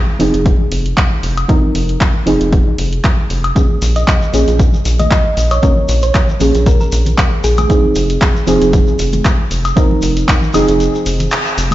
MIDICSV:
0, 0, Header, 1, 6, 480
1, 0, Start_track
1, 0, Tempo, 517241
1, 1384, Time_signature, 4, 2, 24, 8
1, 10901, End_track
2, 0, Start_track
2, 0, Title_t, "Synth pluck"
2, 0, Program_c, 0, 84
2, 3675, Note_on_c, 0, 75, 91
2, 4024, Note_off_c, 0, 75, 0
2, 4635, Note_on_c, 0, 75, 95
2, 4984, Note_off_c, 0, 75, 0
2, 5115, Note_on_c, 0, 73, 89
2, 5185, Note_off_c, 0, 73, 0
2, 5224, Note_on_c, 0, 73, 77
2, 5308, Note_off_c, 0, 73, 0
2, 5595, Note_on_c, 0, 73, 94
2, 5722, Note_off_c, 0, 73, 0
2, 6184, Note_on_c, 0, 70, 89
2, 6268, Note_off_c, 0, 70, 0
2, 6316, Note_on_c, 0, 70, 78
2, 6385, Note_off_c, 0, 70, 0
2, 6904, Note_on_c, 0, 68, 93
2, 6988, Note_off_c, 0, 68, 0
2, 7036, Note_on_c, 0, 68, 75
2, 7105, Note_off_c, 0, 68, 0
2, 10901, End_track
3, 0, Start_track
3, 0, Title_t, "Synth stab"
3, 0, Program_c, 1, 62
3, 0, Note_on_c, 1, 53, 85
3, 0, Note_on_c, 1, 60, 82
3, 0, Note_on_c, 1, 63, 79
3, 0, Note_on_c, 1, 68, 94
3, 154, Note_off_c, 1, 53, 0
3, 157, Note_off_c, 1, 60, 0
3, 159, Note_off_c, 1, 63, 0
3, 162, Note_off_c, 1, 68, 0
3, 176, Note_on_c, 1, 53, 98
3, 181, Note_on_c, 1, 60, 91
3, 187, Note_on_c, 1, 63, 87
3, 192, Note_on_c, 1, 68, 107
3, 1354, Note_off_c, 1, 53, 0
3, 1357, Note_off_c, 1, 60, 0
3, 1359, Note_off_c, 1, 63, 0
3, 1362, Note_off_c, 1, 68, 0
3, 1376, Note_on_c, 1, 53, 97
3, 1381, Note_on_c, 1, 60, 90
3, 1386, Note_on_c, 1, 63, 87
3, 1392, Note_on_c, 1, 70, 107
3, 2074, Note_off_c, 1, 53, 0
3, 2076, Note_off_c, 1, 60, 0
3, 2079, Note_off_c, 1, 63, 0
3, 2082, Note_off_c, 1, 70, 0
3, 2096, Note_on_c, 1, 53, 101
3, 2101, Note_on_c, 1, 60, 96
3, 2107, Note_on_c, 1, 63, 93
3, 2112, Note_on_c, 1, 68, 109
3, 3274, Note_off_c, 1, 53, 0
3, 3276, Note_off_c, 1, 60, 0
3, 3279, Note_off_c, 1, 63, 0
3, 3282, Note_off_c, 1, 68, 0
3, 3296, Note_on_c, 1, 53, 86
3, 3301, Note_on_c, 1, 58, 78
3, 3306, Note_on_c, 1, 61, 79
3, 3311, Note_on_c, 1, 68, 95
3, 3994, Note_off_c, 1, 53, 0
3, 3996, Note_off_c, 1, 58, 0
3, 3999, Note_off_c, 1, 61, 0
3, 4002, Note_off_c, 1, 68, 0
3, 4016, Note_on_c, 1, 53, 100
3, 4021, Note_on_c, 1, 58, 94
3, 4026, Note_on_c, 1, 61, 94
3, 4031, Note_on_c, 1, 68, 106
3, 5194, Note_off_c, 1, 53, 0
3, 5196, Note_off_c, 1, 58, 0
3, 5199, Note_off_c, 1, 61, 0
3, 5202, Note_off_c, 1, 68, 0
3, 5216, Note_on_c, 1, 53, 92
3, 5221, Note_on_c, 1, 58, 88
3, 5226, Note_on_c, 1, 61, 88
3, 5231, Note_on_c, 1, 70, 102
3, 5914, Note_off_c, 1, 53, 0
3, 5916, Note_off_c, 1, 58, 0
3, 5919, Note_off_c, 1, 61, 0
3, 5922, Note_off_c, 1, 70, 0
3, 5936, Note_on_c, 1, 53, 101
3, 5941, Note_on_c, 1, 58, 94
3, 5946, Note_on_c, 1, 61, 92
3, 5952, Note_on_c, 1, 68, 114
3, 7114, Note_off_c, 1, 53, 0
3, 7117, Note_off_c, 1, 58, 0
3, 7119, Note_off_c, 1, 61, 0
3, 7122, Note_off_c, 1, 68, 0
3, 7136, Note_on_c, 1, 53, 84
3, 7141, Note_on_c, 1, 60, 76
3, 7146, Note_on_c, 1, 63, 79
3, 7151, Note_on_c, 1, 68, 98
3, 7834, Note_off_c, 1, 53, 0
3, 7836, Note_off_c, 1, 60, 0
3, 7839, Note_off_c, 1, 63, 0
3, 7842, Note_off_c, 1, 68, 0
3, 7856, Note_on_c, 1, 53, 101
3, 7861, Note_on_c, 1, 60, 94
3, 7866, Note_on_c, 1, 63, 91
3, 7872, Note_on_c, 1, 68, 110
3, 9034, Note_off_c, 1, 53, 0
3, 9036, Note_off_c, 1, 60, 0
3, 9039, Note_off_c, 1, 63, 0
3, 9042, Note_off_c, 1, 68, 0
3, 9056, Note_on_c, 1, 53, 97
3, 9061, Note_on_c, 1, 60, 90
3, 9066, Note_on_c, 1, 63, 91
3, 9071, Note_on_c, 1, 70, 106
3, 9754, Note_off_c, 1, 53, 0
3, 9756, Note_off_c, 1, 60, 0
3, 9759, Note_off_c, 1, 63, 0
3, 9761, Note_off_c, 1, 70, 0
3, 9776, Note_on_c, 1, 53, 103
3, 9781, Note_on_c, 1, 60, 90
3, 9786, Note_on_c, 1, 63, 94
3, 9792, Note_on_c, 1, 68, 111
3, 10901, Note_off_c, 1, 53, 0
3, 10901, Note_off_c, 1, 60, 0
3, 10901, Note_off_c, 1, 63, 0
3, 10901, Note_off_c, 1, 68, 0
3, 10901, End_track
4, 0, Start_track
4, 0, Title_t, "Analog synth bass"
4, 0, Program_c, 2, 38
4, 184, Note_on_c, 2, 29, 85
4, 293, Note_off_c, 2, 29, 0
4, 316, Note_on_c, 2, 29, 91
4, 504, Note_off_c, 2, 29, 0
4, 663, Note_on_c, 2, 29, 93
4, 867, Note_off_c, 2, 29, 0
4, 1143, Note_on_c, 2, 29, 81
4, 1348, Note_off_c, 2, 29, 0
4, 1624, Note_on_c, 2, 29, 103
4, 1828, Note_off_c, 2, 29, 0
4, 2103, Note_on_c, 2, 29, 84
4, 2213, Note_off_c, 2, 29, 0
4, 2235, Note_on_c, 2, 29, 88
4, 2424, Note_off_c, 2, 29, 0
4, 2584, Note_on_c, 2, 29, 93
4, 2788, Note_off_c, 2, 29, 0
4, 3064, Note_on_c, 2, 29, 81
4, 3268, Note_off_c, 2, 29, 0
4, 3544, Note_on_c, 2, 34, 101
4, 3748, Note_off_c, 2, 34, 0
4, 4024, Note_on_c, 2, 34, 85
4, 4133, Note_off_c, 2, 34, 0
4, 4155, Note_on_c, 2, 34, 93
4, 4344, Note_off_c, 2, 34, 0
4, 4504, Note_on_c, 2, 34, 91
4, 4708, Note_off_c, 2, 34, 0
4, 4984, Note_on_c, 2, 34, 78
4, 5188, Note_off_c, 2, 34, 0
4, 5464, Note_on_c, 2, 34, 105
4, 5668, Note_off_c, 2, 34, 0
4, 5944, Note_on_c, 2, 34, 83
4, 6054, Note_off_c, 2, 34, 0
4, 6075, Note_on_c, 2, 34, 94
4, 6264, Note_off_c, 2, 34, 0
4, 6424, Note_on_c, 2, 34, 94
4, 6628, Note_off_c, 2, 34, 0
4, 6904, Note_on_c, 2, 34, 82
4, 7108, Note_off_c, 2, 34, 0
4, 7384, Note_on_c, 2, 29, 100
4, 7588, Note_off_c, 2, 29, 0
4, 7864, Note_on_c, 2, 29, 85
4, 7973, Note_off_c, 2, 29, 0
4, 7995, Note_on_c, 2, 29, 91
4, 8184, Note_off_c, 2, 29, 0
4, 8344, Note_on_c, 2, 29, 95
4, 8548, Note_off_c, 2, 29, 0
4, 8824, Note_on_c, 2, 29, 81
4, 9028, Note_off_c, 2, 29, 0
4, 9304, Note_on_c, 2, 29, 100
4, 9508, Note_off_c, 2, 29, 0
4, 9784, Note_on_c, 2, 29, 83
4, 9893, Note_off_c, 2, 29, 0
4, 9915, Note_on_c, 2, 29, 94
4, 10104, Note_off_c, 2, 29, 0
4, 10264, Note_on_c, 2, 29, 78
4, 10468, Note_off_c, 2, 29, 0
4, 10743, Note_on_c, 2, 29, 95
4, 10901, Note_off_c, 2, 29, 0
4, 10901, End_track
5, 0, Start_track
5, 0, Title_t, "Shekere"
5, 3308, Note_on_c, 9, 82, 48
5, 3400, Note_off_c, 9, 82, 0
5, 3548, Note_on_c, 9, 82, 91
5, 3640, Note_off_c, 9, 82, 0
5, 3680, Note_on_c, 9, 82, 38
5, 3773, Note_off_c, 9, 82, 0
5, 3789, Note_on_c, 9, 82, 51
5, 3882, Note_off_c, 9, 82, 0
5, 3913, Note_on_c, 9, 82, 38
5, 4006, Note_off_c, 9, 82, 0
5, 4028, Note_on_c, 9, 82, 91
5, 4121, Note_off_c, 9, 82, 0
5, 4158, Note_on_c, 9, 82, 37
5, 4250, Note_off_c, 9, 82, 0
5, 4266, Note_on_c, 9, 82, 52
5, 4359, Note_off_c, 9, 82, 0
5, 4393, Note_on_c, 9, 82, 35
5, 4486, Note_off_c, 9, 82, 0
5, 4505, Note_on_c, 9, 82, 93
5, 4598, Note_off_c, 9, 82, 0
5, 4633, Note_on_c, 9, 82, 35
5, 4725, Note_off_c, 9, 82, 0
5, 4745, Note_on_c, 9, 82, 51
5, 4838, Note_off_c, 9, 82, 0
5, 4989, Note_on_c, 9, 82, 91
5, 5081, Note_off_c, 9, 82, 0
5, 5117, Note_on_c, 9, 82, 36
5, 5210, Note_off_c, 9, 82, 0
5, 5225, Note_on_c, 9, 82, 48
5, 5317, Note_off_c, 9, 82, 0
5, 5462, Note_on_c, 9, 82, 87
5, 5555, Note_off_c, 9, 82, 0
5, 5588, Note_on_c, 9, 82, 40
5, 5681, Note_off_c, 9, 82, 0
5, 5702, Note_on_c, 9, 82, 53
5, 5795, Note_off_c, 9, 82, 0
5, 5837, Note_on_c, 9, 82, 33
5, 5929, Note_off_c, 9, 82, 0
5, 5944, Note_on_c, 9, 82, 87
5, 6037, Note_off_c, 9, 82, 0
5, 6079, Note_on_c, 9, 82, 38
5, 6172, Note_off_c, 9, 82, 0
5, 6186, Note_on_c, 9, 82, 54
5, 6279, Note_off_c, 9, 82, 0
5, 6312, Note_on_c, 9, 82, 38
5, 6405, Note_off_c, 9, 82, 0
5, 6422, Note_on_c, 9, 82, 89
5, 6515, Note_off_c, 9, 82, 0
5, 6550, Note_on_c, 9, 82, 37
5, 6643, Note_off_c, 9, 82, 0
5, 6666, Note_on_c, 9, 82, 50
5, 6759, Note_off_c, 9, 82, 0
5, 6904, Note_on_c, 9, 82, 92
5, 6996, Note_off_c, 9, 82, 0
5, 7030, Note_on_c, 9, 82, 38
5, 7123, Note_off_c, 9, 82, 0
5, 7150, Note_on_c, 9, 82, 54
5, 7243, Note_off_c, 9, 82, 0
5, 7383, Note_on_c, 9, 82, 90
5, 7475, Note_off_c, 9, 82, 0
5, 7514, Note_on_c, 9, 82, 39
5, 7607, Note_off_c, 9, 82, 0
5, 7620, Note_on_c, 9, 82, 54
5, 7713, Note_off_c, 9, 82, 0
5, 7758, Note_on_c, 9, 82, 33
5, 7851, Note_off_c, 9, 82, 0
5, 7861, Note_on_c, 9, 82, 83
5, 7953, Note_off_c, 9, 82, 0
5, 7996, Note_on_c, 9, 82, 41
5, 8089, Note_off_c, 9, 82, 0
5, 8104, Note_on_c, 9, 82, 54
5, 8196, Note_off_c, 9, 82, 0
5, 8230, Note_on_c, 9, 82, 30
5, 8323, Note_off_c, 9, 82, 0
5, 8345, Note_on_c, 9, 82, 90
5, 8437, Note_off_c, 9, 82, 0
5, 8463, Note_on_c, 9, 82, 34
5, 8556, Note_off_c, 9, 82, 0
5, 8587, Note_on_c, 9, 82, 50
5, 8680, Note_off_c, 9, 82, 0
5, 8826, Note_on_c, 9, 82, 78
5, 8919, Note_off_c, 9, 82, 0
5, 8959, Note_on_c, 9, 82, 35
5, 9052, Note_off_c, 9, 82, 0
5, 9067, Note_on_c, 9, 82, 54
5, 9160, Note_off_c, 9, 82, 0
5, 9297, Note_on_c, 9, 82, 85
5, 9390, Note_off_c, 9, 82, 0
5, 9437, Note_on_c, 9, 82, 36
5, 9529, Note_off_c, 9, 82, 0
5, 9548, Note_on_c, 9, 82, 47
5, 9641, Note_off_c, 9, 82, 0
5, 9678, Note_on_c, 9, 82, 32
5, 9771, Note_off_c, 9, 82, 0
5, 9779, Note_on_c, 9, 82, 91
5, 9872, Note_off_c, 9, 82, 0
5, 9911, Note_on_c, 9, 82, 42
5, 10004, Note_off_c, 9, 82, 0
5, 10030, Note_on_c, 9, 82, 50
5, 10123, Note_off_c, 9, 82, 0
5, 10160, Note_on_c, 9, 82, 33
5, 10253, Note_off_c, 9, 82, 0
5, 10266, Note_on_c, 9, 82, 89
5, 10359, Note_off_c, 9, 82, 0
5, 10390, Note_on_c, 9, 82, 38
5, 10482, Note_off_c, 9, 82, 0
5, 10494, Note_on_c, 9, 82, 45
5, 10587, Note_off_c, 9, 82, 0
5, 10633, Note_on_c, 9, 82, 39
5, 10726, Note_off_c, 9, 82, 0
5, 10748, Note_on_c, 9, 82, 91
5, 10840, Note_off_c, 9, 82, 0
5, 10901, End_track
6, 0, Start_track
6, 0, Title_t, "Drums"
6, 184, Note_on_c, 9, 46, 102
6, 277, Note_off_c, 9, 46, 0
6, 316, Note_on_c, 9, 42, 66
6, 408, Note_off_c, 9, 42, 0
6, 424, Note_on_c, 9, 36, 124
6, 424, Note_on_c, 9, 42, 53
6, 517, Note_off_c, 9, 36, 0
6, 517, Note_off_c, 9, 42, 0
6, 665, Note_on_c, 9, 46, 110
6, 757, Note_off_c, 9, 46, 0
6, 796, Note_on_c, 9, 42, 64
6, 889, Note_off_c, 9, 42, 0
6, 904, Note_on_c, 9, 36, 109
6, 904, Note_on_c, 9, 42, 49
6, 905, Note_on_c, 9, 39, 120
6, 997, Note_off_c, 9, 36, 0
6, 997, Note_off_c, 9, 42, 0
6, 998, Note_off_c, 9, 39, 0
6, 1144, Note_on_c, 9, 46, 95
6, 1237, Note_off_c, 9, 46, 0
6, 1276, Note_on_c, 9, 42, 63
6, 1276, Note_on_c, 9, 76, 80
6, 1369, Note_off_c, 9, 42, 0
6, 1369, Note_off_c, 9, 76, 0
6, 1384, Note_on_c, 9, 36, 127
6, 1385, Note_on_c, 9, 42, 51
6, 1477, Note_off_c, 9, 36, 0
6, 1477, Note_off_c, 9, 42, 0
6, 1624, Note_on_c, 9, 46, 105
6, 1717, Note_off_c, 9, 46, 0
6, 1755, Note_on_c, 9, 42, 63
6, 1848, Note_off_c, 9, 42, 0
6, 1864, Note_on_c, 9, 36, 108
6, 1864, Note_on_c, 9, 42, 52
6, 1865, Note_on_c, 9, 39, 116
6, 1957, Note_off_c, 9, 36, 0
6, 1957, Note_off_c, 9, 42, 0
6, 1958, Note_off_c, 9, 39, 0
6, 2104, Note_on_c, 9, 46, 99
6, 2197, Note_off_c, 9, 46, 0
6, 2235, Note_on_c, 9, 42, 67
6, 2328, Note_off_c, 9, 42, 0
6, 2344, Note_on_c, 9, 36, 124
6, 2344, Note_on_c, 9, 42, 49
6, 2436, Note_off_c, 9, 36, 0
6, 2437, Note_off_c, 9, 42, 0
6, 2584, Note_on_c, 9, 46, 108
6, 2677, Note_off_c, 9, 46, 0
6, 2715, Note_on_c, 9, 42, 65
6, 2808, Note_off_c, 9, 42, 0
6, 2823, Note_on_c, 9, 36, 107
6, 2824, Note_on_c, 9, 42, 50
6, 2825, Note_on_c, 9, 39, 115
6, 2916, Note_off_c, 9, 36, 0
6, 2917, Note_off_c, 9, 39, 0
6, 2917, Note_off_c, 9, 42, 0
6, 3064, Note_on_c, 9, 46, 95
6, 3157, Note_off_c, 9, 46, 0
6, 3195, Note_on_c, 9, 42, 61
6, 3195, Note_on_c, 9, 76, 89
6, 3288, Note_off_c, 9, 42, 0
6, 3288, Note_off_c, 9, 76, 0
6, 3303, Note_on_c, 9, 36, 114
6, 3304, Note_on_c, 9, 42, 51
6, 3396, Note_off_c, 9, 36, 0
6, 3397, Note_off_c, 9, 42, 0
6, 3544, Note_on_c, 9, 46, 101
6, 3637, Note_off_c, 9, 46, 0
6, 3675, Note_on_c, 9, 42, 61
6, 3768, Note_off_c, 9, 42, 0
6, 3783, Note_on_c, 9, 36, 108
6, 3784, Note_on_c, 9, 42, 50
6, 3785, Note_on_c, 9, 39, 113
6, 3876, Note_off_c, 9, 36, 0
6, 3877, Note_off_c, 9, 42, 0
6, 3878, Note_off_c, 9, 39, 0
6, 4024, Note_on_c, 9, 46, 96
6, 4117, Note_off_c, 9, 46, 0
6, 4155, Note_on_c, 9, 42, 65
6, 4248, Note_off_c, 9, 42, 0
6, 4263, Note_on_c, 9, 36, 123
6, 4265, Note_on_c, 9, 42, 50
6, 4356, Note_off_c, 9, 36, 0
6, 4357, Note_off_c, 9, 42, 0
6, 4504, Note_on_c, 9, 46, 104
6, 4597, Note_off_c, 9, 46, 0
6, 4635, Note_on_c, 9, 42, 63
6, 4637, Note_on_c, 9, 63, 92
6, 4640, Note_on_c, 9, 64, 82
6, 4728, Note_off_c, 9, 42, 0
6, 4730, Note_off_c, 9, 63, 0
6, 4733, Note_off_c, 9, 64, 0
6, 4743, Note_on_c, 9, 36, 109
6, 4744, Note_on_c, 9, 39, 111
6, 4744, Note_on_c, 9, 42, 49
6, 4836, Note_off_c, 9, 36, 0
6, 4837, Note_off_c, 9, 39, 0
6, 4837, Note_off_c, 9, 42, 0
6, 4984, Note_on_c, 9, 46, 91
6, 5077, Note_off_c, 9, 46, 0
6, 5115, Note_on_c, 9, 42, 65
6, 5115, Note_on_c, 9, 76, 89
6, 5208, Note_off_c, 9, 42, 0
6, 5208, Note_off_c, 9, 76, 0
6, 5224, Note_on_c, 9, 36, 116
6, 5224, Note_on_c, 9, 42, 54
6, 5317, Note_off_c, 9, 36, 0
6, 5317, Note_off_c, 9, 42, 0
6, 5464, Note_on_c, 9, 46, 104
6, 5557, Note_off_c, 9, 46, 0
6, 5596, Note_on_c, 9, 42, 64
6, 5688, Note_off_c, 9, 42, 0
6, 5704, Note_on_c, 9, 36, 102
6, 5704, Note_on_c, 9, 42, 50
6, 5705, Note_on_c, 9, 39, 113
6, 5797, Note_off_c, 9, 36, 0
6, 5797, Note_off_c, 9, 42, 0
6, 5798, Note_off_c, 9, 39, 0
6, 5834, Note_on_c, 9, 64, 76
6, 5927, Note_off_c, 9, 64, 0
6, 5944, Note_on_c, 9, 46, 89
6, 6037, Note_off_c, 9, 46, 0
6, 6075, Note_on_c, 9, 42, 66
6, 6168, Note_off_c, 9, 42, 0
6, 6184, Note_on_c, 9, 36, 117
6, 6184, Note_on_c, 9, 42, 52
6, 6277, Note_off_c, 9, 36, 0
6, 6277, Note_off_c, 9, 42, 0
6, 6424, Note_on_c, 9, 46, 100
6, 6517, Note_off_c, 9, 46, 0
6, 6552, Note_on_c, 9, 64, 88
6, 6556, Note_on_c, 9, 42, 67
6, 6644, Note_off_c, 9, 64, 0
6, 6648, Note_off_c, 9, 42, 0
6, 6664, Note_on_c, 9, 36, 101
6, 6664, Note_on_c, 9, 42, 51
6, 6665, Note_on_c, 9, 39, 110
6, 6757, Note_off_c, 9, 36, 0
6, 6757, Note_off_c, 9, 39, 0
6, 6757, Note_off_c, 9, 42, 0
6, 6904, Note_on_c, 9, 46, 88
6, 6997, Note_off_c, 9, 46, 0
6, 7035, Note_on_c, 9, 42, 67
6, 7035, Note_on_c, 9, 76, 88
6, 7037, Note_on_c, 9, 63, 89
6, 7041, Note_on_c, 9, 64, 69
6, 7128, Note_off_c, 9, 42, 0
6, 7128, Note_off_c, 9, 76, 0
6, 7130, Note_off_c, 9, 63, 0
6, 7134, Note_off_c, 9, 64, 0
6, 7144, Note_on_c, 9, 36, 113
6, 7144, Note_on_c, 9, 42, 55
6, 7237, Note_off_c, 9, 36, 0
6, 7237, Note_off_c, 9, 42, 0
6, 7384, Note_on_c, 9, 46, 96
6, 7477, Note_off_c, 9, 46, 0
6, 7516, Note_on_c, 9, 42, 67
6, 7609, Note_off_c, 9, 42, 0
6, 7624, Note_on_c, 9, 36, 102
6, 7624, Note_on_c, 9, 42, 54
6, 7625, Note_on_c, 9, 39, 122
6, 7717, Note_off_c, 9, 36, 0
6, 7717, Note_off_c, 9, 42, 0
6, 7718, Note_off_c, 9, 39, 0
6, 7865, Note_on_c, 9, 46, 89
6, 7957, Note_off_c, 9, 46, 0
6, 7996, Note_on_c, 9, 42, 72
6, 8088, Note_off_c, 9, 42, 0
6, 8104, Note_on_c, 9, 36, 117
6, 8105, Note_on_c, 9, 42, 54
6, 8197, Note_off_c, 9, 36, 0
6, 8197, Note_off_c, 9, 42, 0
6, 8344, Note_on_c, 9, 46, 99
6, 8437, Note_off_c, 9, 46, 0
6, 8471, Note_on_c, 9, 63, 93
6, 8476, Note_on_c, 9, 42, 67
6, 8476, Note_on_c, 9, 64, 90
6, 8564, Note_off_c, 9, 63, 0
6, 8568, Note_off_c, 9, 42, 0
6, 8569, Note_off_c, 9, 64, 0
6, 8584, Note_on_c, 9, 36, 99
6, 8584, Note_on_c, 9, 42, 55
6, 8585, Note_on_c, 9, 39, 114
6, 8677, Note_off_c, 9, 36, 0
6, 8677, Note_off_c, 9, 42, 0
6, 8678, Note_off_c, 9, 39, 0
6, 8825, Note_on_c, 9, 46, 88
6, 8917, Note_off_c, 9, 46, 0
6, 8956, Note_on_c, 9, 42, 71
6, 8956, Note_on_c, 9, 76, 88
6, 9048, Note_off_c, 9, 42, 0
6, 9048, Note_off_c, 9, 76, 0
6, 9064, Note_on_c, 9, 36, 117
6, 9064, Note_on_c, 9, 42, 55
6, 9156, Note_off_c, 9, 36, 0
6, 9157, Note_off_c, 9, 42, 0
6, 9198, Note_on_c, 9, 63, 56
6, 9290, Note_off_c, 9, 63, 0
6, 9304, Note_on_c, 9, 46, 100
6, 9397, Note_off_c, 9, 46, 0
6, 9436, Note_on_c, 9, 42, 67
6, 9528, Note_off_c, 9, 42, 0
6, 9544, Note_on_c, 9, 36, 98
6, 9544, Note_on_c, 9, 42, 55
6, 9545, Note_on_c, 9, 39, 120
6, 9636, Note_off_c, 9, 36, 0
6, 9637, Note_off_c, 9, 42, 0
6, 9638, Note_off_c, 9, 39, 0
6, 9673, Note_on_c, 9, 64, 80
6, 9766, Note_off_c, 9, 64, 0
6, 9784, Note_on_c, 9, 46, 92
6, 9784, Note_on_c, 9, 76, 86
6, 9877, Note_off_c, 9, 46, 0
6, 9877, Note_off_c, 9, 76, 0
6, 9915, Note_on_c, 9, 42, 71
6, 10008, Note_off_c, 9, 42, 0
6, 10024, Note_on_c, 9, 42, 55
6, 10117, Note_off_c, 9, 42, 0
6, 10264, Note_on_c, 9, 46, 103
6, 10357, Note_off_c, 9, 46, 0
6, 10393, Note_on_c, 9, 64, 91
6, 10395, Note_on_c, 9, 42, 72
6, 10485, Note_off_c, 9, 64, 0
6, 10488, Note_off_c, 9, 42, 0
6, 10505, Note_on_c, 9, 39, 119
6, 10505, Note_on_c, 9, 42, 55
6, 10597, Note_off_c, 9, 42, 0
6, 10598, Note_off_c, 9, 39, 0
6, 10745, Note_on_c, 9, 46, 92
6, 10837, Note_off_c, 9, 46, 0
6, 10868, Note_on_c, 9, 63, 99
6, 10873, Note_on_c, 9, 64, 72
6, 10901, Note_off_c, 9, 63, 0
6, 10901, Note_off_c, 9, 64, 0
6, 10901, End_track
0, 0, End_of_file